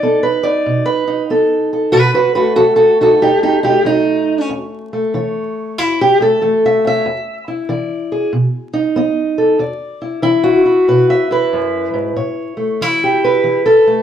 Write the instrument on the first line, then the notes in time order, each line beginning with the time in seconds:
steel-string acoustic guitar
Already playing: D#4 D5
0.03 B3 A4
0.23 B4
0.43 D#4 D5
0.66 B2
0.86 B4
1.07 D#4
1.30 B3 A4
1.73 A4
1.92 B2 F#4 B4
2.14 F#4 B4
2.35 A3 F#4 B4
2.56 F#3 F#4 A4
2.76 F#4 A4
3.01 D#4 F#4 A4
3.22 F#2 D#4 G4
3.43 D#4 G4
3.63 A3 D#4 G4
3.85 F#3 D#4
4.49 E2
4.93 A3
5.14 E3 C#5
5.78 E2 E4
6.01 G4
6.20 A3 A4
6.42 E3 A3
6.66 E5
6.85 C#4 E5
7.06 E2
7.48 E4
7.69 E3 D5
8.12 G#4
8.33 B2
8.74 D#4
8.96 B3 D#5
9.38 A4
9.59 E2 D5
10.02 E4
10.22 E3 E4
10.44 F#4
10.66 E4
10.88 B2 B4
11.10 E5
11.31 E4 B4
11.53 F#2
11.94 G#2
12.16 A2 C#5
12.57 A3
12.81 E3 E4
13.04 G4
13.24 B4
13.44 E3
13.66 A4
13.87 A3